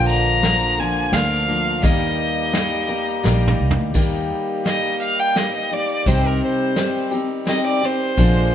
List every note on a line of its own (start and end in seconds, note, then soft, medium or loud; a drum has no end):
0.00 1.10 A#1 medium
0.00 0.43 A#2 medium
0.00 0.44 D3 medium
0.00 1.83 D3 medium
0.00 0.42 F3 medium
0.00 1.83 F3 medium
0.00 0.44 A#3 medium
0.00 3.91 A#3 medium
0.00 0.44 D4 medium
0.00 1.83 F4 medium
0.00 0.45 A#4 medium
0.08 0.81 A#5 loud
0.08 ride medium
0.08 tambourine soft
0.43 0.78 F3 medium
0.43 0.79 A#3 medium
0.43 0.78 D4 medium
0.43 0.77 A#4 medium
0.43 snare medium
0.43 ride medium
0.43 tambourine medium
0.61 tambourine soft
0.78 1.12 F3 soft
0.78 1.13 A#3 soft
0.78 1.13 D4 soft
0.78 1.14 A#4 soft
0.78 1.15 G#5 medium
1.12 1.80 D2 medium
1.12 1.49 F3 medium
1.12 1.48 A#3 medium
1.12 1.48 D4 medium
1.12 1.47 A#4 medium
1.12 1.84 F5 medium
1.12 snare medium
1.12 ride medium
1.12 tambourine medium
1.33 tambourine soft
1.48 1.83 F3 soft
1.48 1.82 A#3 soft
1.48 1.84 D4 soft
1.48 1.84 A#4 soft
1.83 3.20 D#2 medium
1.83 2.54 D#3 medium
1.83 3.94 D#3 medium
1.83 2.51 G3 medium
1.83 3.93 G3 medium
1.83 2.52 A#3 medium
1.83 2.53 D#4 medium
1.83 3.93 G4 medium
1.83 2.54 A#4 medium
1.83 3.59 D#5 medium
1.83 kick medium
1.83 ride soft
1.83 tambourine loud
2.52 2.89 G3 medium
2.52 2.89 A#3 medium
2.52 2.89 D#4 medium
2.52 2.87 A#4 medium
2.52 snare medium
2.52 ride medium
2.52 tambourine loud
2.88 3.23 A#3 soft
2.88 3.24 D#4 soft
2.88 3.24 A#4 medium
3.08 tambourine soft
3.23 3.58 A#1 medium
3.23 3.93 G3 medium
3.23 3.94 A#3 medium
3.23 3.94 D#4 medium
3.23 3.95 A#4 medium
3.23 snare medium
3.23 tambourine medium
3.41 tambourine soft
3.48 mid tom medium
3.60 3.76 C2 medium
3.71 floor tom medium
3.78 3.94 D2 medium
3.94 4.28 D#2 medium
3.94 4.65 D#3 medium
3.94 6.04 D#3 medium
3.94 4.64 G3 medium
3.94 8.13 G3 medium
3.94 6.04 A#3 medium
3.94 4.64 A#3 medium
3.94 4.65 D#4 medium
3.94 8.13 G4 medium
3.94 4.66 G4 medium
3.94 kick medium
3.94 ride medium
3.94 tambourine medium
4.64 5.34 G3 medium
4.64 5.34 A#3 medium
4.64 5.36 D#4 medium
4.64 5.36 G4 medium
4.64 4.99 D#5 medium
4.64 snare medium
4.64 ride soft
4.64 tambourine soft
4.84 tambourine soft
5.01 5.21 F5 medium
5.01 tambourine medium
5.19 5.38 G5 medium
5.35 5.71 G3 medium
5.35 5.71 A#3 medium
5.35 5.70 D#4 medium
5.35 5.69 G4 medium
5.35 5.54 D#5 medium
5.35 snare medium
5.35 ride soft
5.55 5.75 D#5 medium
5.70 6.07 A#3 soft
5.70 6.06 D#4 soft
5.70 6.06 G4 soft
5.70 6.09 D5 medium
5.89 tambourine soft
6.06 6.40 C2 medium
6.06 6.77 C3 medium
6.06 8.16 D#3 medium
6.06 6.76 G3 medium
6.06 6.76 C4 medium
6.06 8.16 C4 medium
6.06 6.77 D#4 medium
6.06 6.77 G4 medium
6.06 6.28 C5 medium
6.06 kick medium
6.06 ride soft
6.06 tambourine medium
6.27 6.43 A#4 medium
6.44 7.09 C5 medium
6.76 7.12 G3 medium
6.76 7.12 C4 medium
6.76 7.11 D#4 medium
6.76 7.10 G4 medium
6.76 snare medium
6.76 ride soft
6.76 tambourine soft
6.95 tambourine soft
7.11 7.46 C4 soft
7.11 7.47 D#4 soft
7.11 7.47 G4 soft
7.11 tambourine medium
7.45 7.81 G3 medium
7.45 7.82 C4 medium
7.45 7.82 D#4 medium
7.45 7.81 G4 medium
7.45 7.64 D#5 medium
7.45 snare medium
7.45 ride soft
7.67 7.87 D5 medium
7.82 8.18 C4 soft
7.82 8.18 D#4 soft
7.82 8.17 G4 soft
7.82 8.55 C5 loud
7.82 ride soft
8.01 tambourine soft
8.17 8.51 A#1 loud
8.17 8.55 A#2 medium
8.17 8.55 D3 medium
8.17 8.55 F3 medium
8.17 8.55 G#3 medium
8.17 8.55 A#3 medium
8.17 8.55 D4 medium
8.17 8.55 F4 medium
8.17 8.55 G#4 medium
8.17 kick medium
8.17 ride soft
8.17 tambourine medium